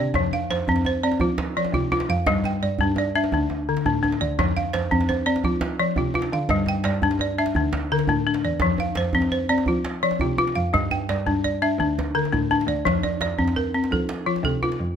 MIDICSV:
0, 0, Header, 1, 4, 480
1, 0, Start_track
1, 0, Key_signature, -1, "major"
1, 0, Tempo, 352941
1, 200, Time_signature, 12, 3, 24, 8
1, 20346, End_track
2, 0, Start_track
2, 0, Title_t, "Balafon"
2, 0, Program_c, 0, 12
2, 0, Note_on_c, 0, 62, 78
2, 0, Note_on_c, 0, 74, 66
2, 202, Note_off_c, 0, 62, 0
2, 210, Note_on_c, 0, 53, 80
2, 442, Note_off_c, 0, 74, 0
2, 450, Note_on_c, 0, 77, 63
2, 686, Note_off_c, 0, 53, 0
2, 688, Note_on_c, 0, 72, 70
2, 936, Note_on_c, 0, 60, 80
2, 1158, Note_off_c, 0, 72, 0
2, 1166, Note_off_c, 0, 77, 0
2, 1175, Note_on_c, 0, 72, 69
2, 1390, Note_off_c, 0, 60, 0
2, 1406, Note_on_c, 0, 60, 76
2, 1407, Note_on_c, 0, 74, 64
2, 1645, Note_on_c, 0, 65, 63
2, 1885, Note_off_c, 0, 60, 0
2, 1889, Note_off_c, 0, 72, 0
2, 2117, Note_off_c, 0, 74, 0
2, 2132, Note_on_c, 0, 53, 76
2, 2134, Note_on_c, 0, 74, 65
2, 2352, Note_off_c, 0, 65, 0
2, 2368, Note_on_c, 0, 65, 71
2, 2592, Note_off_c, 0, 65, 0
2, 2608, Note_off_c, 0, 53, 0
2, 2608, Note_on_c, 0, 65, 76
2, 2849, Note_off_c, 0, 74, 0
2, 2852, Note_on_c, 0, 77, 63
2, 3087, Note_off_c, 0, 65, 0
2, 3087, Note_on_c, 0, 55, 89
2, 3328, Note_off_c, 0, 77, 0
2, 3337, Note_on_c, 0, 79, 65
2, 3566, Note_off_c, 0, 55, 0
2, 3572, Note_on_c, 0, 74, 65
2, 3817, Note_on_c, 0, 62, 77
2, 4041, Note_off_c, 0, 74, 0
2, 4051, Note_off_c, 0, 79, 0
2, 4057, Note_on_c, 0, 74, 69
2, 4273, Note_off_c, 0, 62, 0
2, 4290, Note_on_c, 0, 62, 75
2, 4291, Note_on_c, 0, 76, 63
2, 4523, Note_off_c, 0, 62, 0
2, 4539, Note_on_c, 0, 62, 65
2, 4768, Note_off_c, 0, 76, 0
2, 4771, Note_off_c, 0, 74, 0
2, 5016, Note_on_c, 0, 50, 73
2, 5231, Note_off_c, 0, 62, 0
2, 5247, Note_on_c, 0, 62, 66
2, 5463, Note_off_c, 0, 62, 0
2, 5479, Note_on_c, 0, 62, 71
2, 5490, Note_off_c, 0, 50, 0
2, 5725, Note_on_c, 0, 74, 59
2, 5962, Note_off_c, 0, 62, 0
2, 5968, Note_on_c, 0, 53, 83
2, 6205, Note_off_c, 0, 74, 0
2, 6209, Note_on_c, 0, 77, 65
2, 6438, Note_on_c, 0, 72, 69
2, 6446, Note_off_c, 0, 53, 0
2, 6681, Note_on_c, 0, 60, 79
2, 6905, Note_off_c, 0, 72, 0
2, 6921, Note_on_c, 0, 72, 66
2, 6926, Note_off_c, 0, 77, 0
2, 7142, Note_off_c, 0, 60, 0
2, 7155, Note_on_c, 0, 74, 62
2, 7159, Note_on_c, 0, 60, 75
2, 7407, Note_on_c, 0, 65, 65
2, 7641, Note_off_c, 0, 60, 0
2, 7642, Note_off_c, 0, 72, 0
2, 7865, Note_off_c, 0, 74, 0
2, 7881, Note_on_c, 0, 53, 79
2, 7881, Note_on_c, 0, 74, 62
2, 8112, Note_off_c, 0, 65, 0
2, 8128, Note_on_c, 0, 65, 64
2, 8351, Note_off_c, 0, 65, 0
2, 8362, Note_off_c, 0, 53, 0
2, 8367, Note_on_c, 0, 65, 71
2, 8602, Note_off_c, 0, 74, 0
2, 8611, Note_on_c, 0, 77, 63
2, 8845, Note_off_c, 0, 65, 0
2, 8847, Note_on_c, 0, 55, 85
2, 9086, Note_off_c, 0, 77, 0
2, 9092, Note_on_c, 0, 79, 66
2, 9317, Note_on_c, 0, 74, 62
2, 9324, Note_off_c, 0, 55, 0
2, 9563, Note_on_c, 0, 62, 81
2, 9789, Note_off_c, 0, 74, 0
2, 9805, Note_on_c, 0, 74, 66
2, 9806, Note_off_c, 0, 79, 0
2, 10026, Note_off_c, 0, 62, 0
2, 10043, Note_on_c, 0, 62, 73
2, 10044, Note_on_c, 0, 76, 64
2, 10268, Note_off_c, 0, 62, 0
2, 10284, Note_on_c, 0, 62, 68
2, 10522, Note_off_c, 0, 76, 0
2, 10523, Note_off_c, 0, 74, 0
2, 10769, Note_on_c, 0, 70, 63
2, 10770, Note_on_c, 0, 50, 79
2, 10985, Note_off_c, 0, 62, 0
2, 11001, Note_on_c, 0, 62, 68
2, 11229, Note_off_c, 0, 62, 0
2, 11245, Note_off_c, 0, 50, 0
2, 11245, Note_on_c, 0, 62, 75
2, 11484, Note_off_c, 0, 70, 0
2, 11486, Note_on_c, 0, 74, 61
2, 11722, Note_off_c, 0, 62, 0
2, 11722, Note_on_c, 0, 53, 86
2, 11963, Note_off_c, 0, 74, 0
2, 11967, Note_on_c, 0, 77, 66
2, 12201, Note_off_c, 0, 53, 0
2, 12204, Note_on_c, 0, 72, 69
2, 12440, Note_on_c, 0, 60, 86
2, 12657, Note_off_c, 0, 72, 0
2, 12674, Note_on_c, 0, 72, 65
2, 12683, Note_off_c, 0, 77, 0
2, 12894, Note_off_c, 0, 60, 0
2, 12910, Note_on_c, 0, 74, 63
2, 12911, Note_on_c, 0, 60, 81
2, 13163, Note_on_c, 0, 65, 66
2, 13395, Note_off_c, 0, 60, 0
2, 13396, Note_off_c, 0, 72, 0
2, 13622, Note_off_c, 0, 74, 0
2, 13639, Note_on_c, 0, 53, 76
2, 13639, Note_on_c, 0, 74, 63
2, 13868, Note_off_c, 0, 65, 0
2, 13884, Note_on_c, 0, 65, 64
2, 14105, Note_off_c, 0, 65, 0
2, 14119, Note_off_c, 0, 53, 0
2, 14122, Note_on_c, 0, 65, 77
2, 14355, Note_on_c, 0, 77, 64
2, 14359, Note_off_c, 0, 74, 0
2, 14600, Note_off_c, 0, 65, 0
2, 14602, Note_on_c, 0, 55, 80
2, 14837, Note_off_c, 0, 77, 0
2, 14841, Note_on_c, 0, 79, 66
2, 15081, Note_off_c, 0, 55, 0
2, 15085, Note_on_c, 0, 74, 66
2, 15321, Note_on_c, 0, 62, 76
2, 15547, Note_off_c, 0, 74, 0
2, 15560, Note_off_c, 0, 79, 0
2, 15564, Note_on_c, 0, 74, 65
2, 15788, Note_off_c, 0, 62, 0
2, 15804, Note_on_c, 0, 62, 75
2, 15806, Note_on_c, 0, 76, 64
2, 16031, Note_off_c, 0, 62, 0
2, 16048, Note_on_c, 0, 62, 69
2, 16282, Note_off_c, 0, 74, 0
2, 16283, Note_off_c, 0, 76, 0
2, 16521, Note_on_c, 0, 50, 71
2, 16523, Note_on_c, 0, 70, 61
2, 16745, Note_off_c, 0, 62, 0
2, 16761, Note_on_c, 0, 62, 69
2, 16996, Note_off_c, 0, 62, 0
2, 17001, Note_off_c, 0, 50, 0
2, 17012, Note_on_c, 0, 62, 77
2, 17242, Note_off_c, 0, 70, 0
2, 17245, Note_on_c, 0, 74, 64
2, 17481, Note_on_c, 0, 53, 85
2, 17486, Note_off_c, 0, 62, 0
2, 17711, Note_off_c, 0, 74, 0
2, 17727, Note_on_c, 0, 74, 63
2, 17957, Note_off_c, 0, 74, 0
2, 17961, Note_off_c, 0, 53, 0
2, 17973, Note_on_c, 0, 74, 64
2, 18204, Note_on_c, 0, 60, 77
2, 18446, Note_on_c, 0, 70, 65
2, 18675, Note_off_c, 0, 60, 0
2, 18688, Note_off_c, 0, 74, 0
2, 18692, Note_on_c, 0, 60, 73
2, 18933, Note_on_c, 0, 69, 66
2, 19165, Note_off_c, 0, 70, 0
2, 19167, Note_off_c, 0, 60, 0
2, 19399, Note_on_c, 0, 53, 75
2, 19400, Note_on_c, 0, 65, 60
2, 19633, Note_off_c, 0, 69, 0
2, 19649, Note_on_c, 0, 69, 66
2, 19875, Note_off_c, 0, 65, 0
2, 19881, Note_off_c, 0, 53, 0
2, 19892, Note_on_c, 0, 65, 73
2, 20346, Note_off_c, 0, 65, 0
2, 20346, Note_off_c, 0, 69, 0
2, 20346, End_track
3, 0, Start_track
3, 0, Title_t, "Cello"
3, 0, Program_c, 1, 42
3, 193, Note_on_c, 1, 41, 89
3, 629, Note_off_c, 1, 41, 0
3, 682, Note_on_c, 1, 41, 76
3, 898, Note_off_c, 1, 41, 0
3, 917, Note_on_c, 1, 41, 84
3, 1586, Note_off_c, 1, 41, 0
3, 1632, Note_on_c, 1, 53, 93
3, 2304, Note_off_c, 1, 53, 0
3, 2347, Note_on_c, 1, 48, 90
3, 2787, Note_off_c, 1, 48, 0
3, 2839, Note_on_c, 1, 41, 88
3, 2949, Note_off_c, 1, 41, 0
3, 3084, Note_on_c, 1, 43, 88
3, 3517, Note_off_c, 1, 43, 0
3, 3568, Note_on_c, 1, 43, 78
3, 3783, Note_off_c, 1, 43, 0
3, 3813, Note_on_c, 1, 43, 88
3, 4475, Note_off_c, 1, 43, 0
3, 4525, Note_on_c, 1, 38, 86
3, 5191, Note_off_c, 1, 38, 0
3, 5244, Note_on_c, 1, 45, 85
3, 5677, Note_off_c, 1, 45, 0
3, 5724, Note_on_c, 1, 38, 81
3, 5833, Note_off_c, 1, 38, 0
3, 5964, Note_on_c, 1, 41, 87
3, 6396, Note_off_c, 1, 41, 0
3, 6441, Note_on_c, 1, 41, 80
3, 6659, Note_off_c, 1, 41, 0
3, 6680, Note_on_c, 1, 41, 84
3, 7347, Note_off_c, 1, 41, 0
3, 7402, Note_on_c, 1, 53, 84
3, 8068, Note_off_c, 1, 53, 0
3, 8117, Note_on_c, 1, 48, 87
3, 8552, Note_off_c, 1, 48, 0
3, 8601, Note_on_c, 1, 50, 85
3, 8710, Note_off_c, 1, 50, 0
3, 8839, Note_on_c, 1, 43, 96
3, 9272, Note_off_c, 1, 43, 0
3, 9311, Note_on_c, 1, 43, 80
3, 9532, Note_off_c, 1, 43, 0
3, 9549, Note_on_c, 1, 43, 86
3, 10220, Note_off_c, 1, 43, 0
3, 10268, Note_on_c, 1, 38, 88
3, 10939, Note_off_c, 1, 38, 0
3, 10996, Note_on_c, 1, 45, 87
3, 11430, Note_off_c, 1, 45, 0
3, 11476, Note_on_c, 1, 40, 83
3, 11586, Note_off_c, 1, 40, 0
3, 11724, Note_on_c, 1, 41, 85
3, 12154, Note_off_c, 1, 41, 0
3, 12192, Note_on_c, 1, 41, 79
3, 12411, Note_off_c, 1, 41, 0
3, 12435, Note_on_c, 1, 41, 84
3, 13103, Note_off_c, 1, 41, 0
3, 13162, Note_on_c, 1, 53, 82
3, 13826, Note_off_c, 1, 53, 0
3, 13886, Note_on_c, 1, 48, 90
3, 14315, Note_off_c, 1, 48, 0
3, 14358, Note_on_c, 1, 41, 85
3, 14466, Note_off_c, 1, 41, 0
3, 14593, Note_on_c, 1, 43, 91
3, 15028, Note_off_c, 1, 43, 0
3, 15083, Note_on_c, 1, 43, 78
3, 15297, Note_off_c, 1, 43, 0
3, 15316, Note_on_c, 1, 43, 88
3, 15983, Note_off_c, 1, 43, 0
3, 16030, Note_on_c, 1, 38, 88
3, 16701, Note_off_c, 1, 38, 0
3, 16764, Note_on_c, 1, 45, 87
3, 17195, Note_off_c, 1, 45, 0
3, 17227, Note_on_c, 1, 38, 79
3, 17341, Note_off_c, 1, 38, 0
3, 17474, Note_on_c, 1, 41, 88
3, 17910, Note_off_c, 1, 41, 0
3, 17964, Note_on_c, 1, 41, 73
3, 18179, Note_off_c, 1, 41, 0
3, 18194, Note_on_c, 1, 41, 80
3, 18864, Note_off_c, 1, 41, 0
3, 18917, Note_on_c, 1, 53, 84
3, 19586, Note_off_c, 1, 53, 0
3, 19631, Note_on_c, 1, 48, 90
3, 20069, Note_off_c, 1, 48, 0
3, 20122, Note_on_c, 1, 41, 83
3, 20231, Note_off_c, 1, 41, 0
3, 20346, End_track
4, 0, Start_track
4, 0, Title_t, "Djembe"
4, 190, Note_on_c, 9, 62, 59
4, 190, Note_on_c, 9, 64, 62
4, 321, Note_off_c, 9, 62, 0
4, 321, Note_on_c, 9, 62, 18
4, 326, Note_off_c, 9, 64, 0
4, 446, Note_on_c, 9, 63, 60
4, 457, Note_off_c, 9, 62, 0
4, 572, Note_on_c, 9, 62, 20
4, 582, Note_off_c, 9, 63, 0
4, 686, Note_off_c, 9, 62, 0
4, 686, Note_on_c, 9, 62, 64
4, 822, Note_off_c, 9, 62, 0
4, 923, Note_on_c, 9, 64, 66
4, 1030, Note_on_c, 9, 62, 51
4, 1059, Note_off_c, 9, 64, 0
4, 1151, Note_on_c, 9, 63, 67
4, 1166, Note_off_c, 9, 62, 0
4, 1287, Note_off_c, 9, 63, 0
4, 1515, Note_on_c, 9, 62, 53
4, 1628, Note_on_c, 9, 64, 71
4, 1651, Note_off_c, 9, 62, 0
4, 1764, Note_off_c, 9, 64, 0
4, 1876, Note_on_c, 9, 62, 71
4, 1876, Note_on_c, 9, 63, 72
4, 2012, Note_off_c, 9, 62, 0
4, 2012, Note_off_c, 9, 63, 0
4, 2113, Note_on_c, 9, 62, 23
4, 2237, Note_off_c, 9, 62, 0
4, 2237, Note_on_c, 9, 62, 54
4, 2362, Note_on_c, 9, 64, 76
4, 2373, Note_off_c, 9, 62, 0
4, 2484, Note_on_c, 9, 62, 23
4, 2498, Note_off_c, 9, 64, 0
4, 2611, Note_on_c, 9, 63, 83
4, 2620, Note_off_c, 9, 62, 0
4, 2721, Note_on_c, 9, 62, 66
4, 2747, Note_off_c, 9, 63, 0
4, 2857, Note_off_c, 9, 62, 0
4, 3081, Note_on_c, 9, 62, 80
4, 3081, Note_on_c, 9, 64, 82
4, 3217, Note_off_c, 9, 62, 0
4, 3217, Note_off_c, 9, 64, 0
4, 3317, Note_on_c, 9, 63, 76
4, 3449, Note_on_c, 9, 62, 26
4, 3453, Note_off_c, 9, 63, 0
4, 3585, Note_off_c, 9, 62, 0
4, 3687, Note_on_c, 9, 62, 24
4, 3788, Note_on_c, 9, 64, 78
4, 3823, Note_off_c, 9, 62, 0
4, 3924, Note_off_c, 9, 64, 0
4, 4025, Note_on_c, 9, 63, 77
4, 4161, Note_off_c, 9, 63, 0
4, 4401, Note_on_c, 9, 62, 59
4, 4518, Note_on_c, 9, 64, 75
4, 4537, Note_off_c, 9, 62, 0
4, 4654, Note_off_c, 9, 64, 0
4, 4756, Note_on_c, 9, 63, 76
4, 4880, Note_on_c, 9, 62, 23
4, 4892, Note_off_c, 9, 63, 0
4, 5016, Note_off_c, 9, 62, 0
4, 5122, Note_on_c, 9, 62, 56
4, 5246, Note_on_c, 9, 64, 73
4, 5258, Note_off_c, 9, 62, 0
4, 5382, Note_off_c, 9, 64, 0
4, 5493, Note_on_c, 9, 63, 76
4, 5608, Note_on_c, 9, 62, 59
4, 5629, Note_off_c, 9, 63, 0
4, 5744, Note_off_c, 9, 62, 0
4, 5968, Note_on_c, 9, 62, 73
4, 5968, Note_on_c, 9, 64, 70
4, 6087, Note_off_c, 9, 62, 0
4, 6087, Note_on_c, 9, 62, 23
4, 6104, Note_off_c, 9, 64, 0
4, 6214, Note_on_c, 9, 63, 69
4, 6223, Note_off_c, 9, 62, 0
4, 6332, Note_on_c, 9, 62, 23
4, 6350, Note_off_c, 9, 63, 0
4, 6443, Note_off_c, 9, 62, 0
4, 6443, Note_on_c, 9, 62, 73
4, 6579, Note_off_c, 9, 62, 0
4, 6686, Note_on_c, 9, 64, 73
4, 6807, Note_on_c, 9, 62, 56
4, 6822, Note_off_c, 9, 64, 0
4, 6928, Note_on_c, 9, 63, 74
4, 6943, Note_off_c, 9, 62, 0
4, 7064, Note_off_c, 9, 63, 0
4, 7287, Note_on_c, 9, 62, 54
4, 7397, Note_on_c, 9, 64, 73
4, 7423, Note_off_c, 9, 62, 0
4, 7533, Note_off_c, 9, 64, 0
4, 7629, Note_on_c, 9, 62, 70
4, 7629, Note_on_c, 9, 63, 70
4, 7765, Note_off_c, 9, 62, 0
4, 7765, Note_off_c, 9, 63, 0
4, 7871, Note_on_c, 9, 62, 23
4, 8007, Note_off_c, 9, 62, 0
4, 8107, Note_on_c, 9, 64, 78
4, 8232, Note_on_c, 9, 62, 22
4, 8243, Note_off_c, 9, 64, 0
4, 8350, Note_on_c, 9, 63, 75
4, 8368, Note_off_c, 9, 62, 0
4, 8459, Note_on_c, 9, 62, 61
4, 8486, Note_off_c, 9, 63, 0
4, 8595, Note_off_c, 9, 62, 0
4, 8825, Note_on_c, 9, 62, 70
4, 8825, Note_on_c, 9, 64, 75
4, 8945, Note_off_c, 9, 62, 0
4, 8945, Note_on_c, 9, 62, 22
4, 8961, Note_off_c, 9, 64, 0
4, 9058, Note_on_c, 9, 63, 73
4, 9081, Note_off_c, 9, 62, 0
4, 9176, Note_on_c, 9, 62, 24
4, 9194, Note_off_c, 9, 63, 0
4, 9299, Note_off_c, 9, 62, 0
4, 9299, Note_on_c, 9, 62, 78
4, 9435, Note_off_c, 9, 62, 0
4, 9544, Note_on_c, 9, 64, 70
4, 9667, Note_on_c, 9, 62, 57
4, 9680, Note_off_c, 9, 64, 0
4, 9779, Note_on_c, 9, 63, 71
4, 9803, Note_off_c, 9, 62, 0
4, 9915, Note_off_c, 9, 63, 0
4, 10144, Note_on_c, 9, 62, 55
4, 10267, Note_on_c, 9, 64, 68
4, 10280, Note_off_c, 9, 62, 0
4, 10403, Note_off_c, 9, 64, 0
4, 10508, Note_on_c, 9, 62, 73
4, 10508, Note_on_c, 9, 63, 72
4, 10644, Note_off_c, 9, 62, 0
4, 10644, Note_off_c, 9, 63, 0
4, 10752, Note_on_c, 9, 62, 23
4, 10864, Note_off_c, 9, 62, 0
4, 10864, Note_on_c, 9, 62, 56
4, 10980, Note_on_c, 9, 64, 73
4, 11000, Note_off_c, 9, 62, 0
4, 11104, Note_on_c, 9, 62, 23
4, 11116, Note_off_c, 9, 64, 0
4, 11240, Note_off_c, 9, 62, 0
4, 11346, Note_on_c, 9, 62, 60
4, 11482, Note_off_c, 9, 62, 0
4, 11690, Note_on_c, 9, 62, 75
4, 11690, Note_on_c, 9, 64, 67
4, 11816, Note_off_c, 9, 62, 0
4, 11816, Note_on_c, 9, 62, 24
4, 11826, Note_off_c, 9, 64, 0
4, 11942, Note_on_c, 9, 63, 72
4, 11952, Note_off_c, 9, 62, 0
4, 12056, Note_on_c, 9, 62, 23
4, 12078, Note_off_c, 9, 63, 0
4, 12175, Note_off_c, 9, 62, 0
4, 12175, Note_on_c, 9, 62, 70
4, 12311, Note_off_c, 9, 62, 0
4, 12414, Note_on_c, 9, 64, 73
4, 12534, Note_on_c, 9, 62, 52
4, 12550, Note_off_c, 9, 64, 0
4, 12670, Note_off_c, 9, 62, 0
4, 12670, Note_on_c, 9, 63, 65
4, 12806, Note_off_c, 9, 63, 0
4, 13024, Note_on_c, 9, 62, 53
4, 13139, Note_on_c, 9, 64, 70
4, 13160, Note_off_c, 9, 62, 0
4, 13275, Note_off_c, 9, 64, 0
4, 13390, Note_on_c, 9, 62, 68
4, 13526, Note_off_c, 9, 62, 0
4, 13627, Note_on_c, 9, 62, 21
4, 13748, Note_off_c, 9, 62, 0
4, 13748, Note_on_c, 9, 62, 51
4, 13864, Note_on_c, 9, 64, 68
4, 13884, Note_off_c, 9, 62, 0
4, 13998, Note_on_c, 9, 62, 21
4, 14000, Note_off_c, 9, 64, 0
4, 14118, Note_on_c, 9, 63, 70
4, 14134, Note_off_c, 9, 62, 0
4, 14243, Note_on_c, 9, 62, 54
4, 14254, Note_off_c, 9, 63, 0
4, 14379, Note_off_c, 9, 62, 0
4, 14605, Note_on_c, 9, 62, 63
4, 14605, Note_on_c, 9, 64, 66
4, 14741, Note_off_c, 9, 62, 0
4, 14741, Note_off_c, 9, 64, 0
4, 14837, Note_on_c, 9, 63, 64
4, 14973, Note_off_c, 9, 63, 0
4, 15083, Note_on_c, 9, 62, 65
4, 15219, Note_off_c, 9, 62, 0
4, 15324, Note_on_c, 9, 64, 62
4, 15460, Note_off_c, 9, 64, 0
4, 15573, Note_on_c, 9, 62, 20
4, 15573, Note_on_c, 9, 63, 60
4, 15689, Note_off_c, 9, 62, 0
4, 15689, Note_on_c, 9, 62, 19
4, 15709, Note_off_c, 9, 63, 0
4, 15825, Note_off_c, 9, 62, 0
4, 16054, Note_on_c, 9, 64, 60
4, 16190, Note_off_c, 9, 64, 0
4, 16302, Note_on_c, 9, 62, 61
4, 16302, Note_on_c, 9, 63, 60
4, 16427, Note_off_c, 9, 62, 0
4, 16427, Note_on_c, 9, 62, 19
4, 16438, Note_off_c, 9, 63, 0
4, 16563, Note_off_c, 9, 62, 0
4, 16663, Note_on_c, 9, 62, 45
4, 16779, Note_off_c, 9, 62, 0
4, 16779, Note_on_c, 9, 62, 20
4, 16779, Note_on_c, 9, 64, 60
4, 16895, Note_off_c, 9, 62, 0
4, 16895, Note_on_c, 9, 62, 19
4, 16915, Note_off_c, 9, 64, 0
4, 17025, Note_on_c, 9, 63, 60
4, 17031, Note_off_c, 9, 62, 0
4, 17150, Note_on_c, 9, 62, 48
4, 17161, Note_off_c, 9, 63, 0
4, 17286, Note_off_c, 9, 62, 0
4, 17497, Note_on_c, 9, 62, 70
4, 17497, Note_on_c, 9, 64, 68
4, 17610, Note_off_c, 9, 62, 0
4, 17610, Note_on_c, 9, 62, 22
4, 17633, Note_off_c, 9, 64, 0
4, 17731, Note_on_c, 9, 63, 67
4, 17746, Note_off_c, 9, 62, 0
4, 17844, Note_on_c, 9, 62, 22
4, 17867, Note_off_c, 9, 63, 0
4, 17962, Note_off_c, 9, 62, 0
4, 17962, Note_on_c, 9, 62, 70
4, 18098, Note_off_c, 9, 62, 0
4, 18203, Note_on_c, 9, 64, 66
4, 18327, Note_on_c, 9, 62, 52
4, 18339, Note_off_c, 9, 64, 0
4, 18450, Note_on_c, 9, 63, 64
4, 18463, Note_off_c, 9, 62, 0
4, 18586, Note_off_c, 9, 63, 0
4, 18817, Note_on_c, 9, 62, 50
4, 18941, Note_on_c, 9, 64, 67
4, 18953, Note_off_c, 9, 62, 0
4, 19077, Note_off_c, 9, 64, 0
4, 19161, Note_on_c, 9, 62, 67
4, 19297, Note_off_c, 9, 62, 0
4, 19411, Note_on_c, 9, 62, 21
4, 19530, Note_off_c, 9, 62, 0
4, 19530, Note_on_c, 9, 62, 46
4, 19640, Note_on_c, 9, 64, 66
4, 19666, Note_off_c, 9, 62, 0
4, 19772, Note_on_c, 9, 62, 21
4, 19776, Note_off_c, 9, 64, 0
4, 19891, Note_on_c, 9, 63, 66
4, 19908, Note_off_c, 9, 62, 0
4, 20016, Note_on_c, 9, 62, 49
4, 20027, Note_off_c, 9, 63, 0
4, 20152, Note_off_c, 9, 62, 0
4, 20346, End_track
0, 0, End_of_file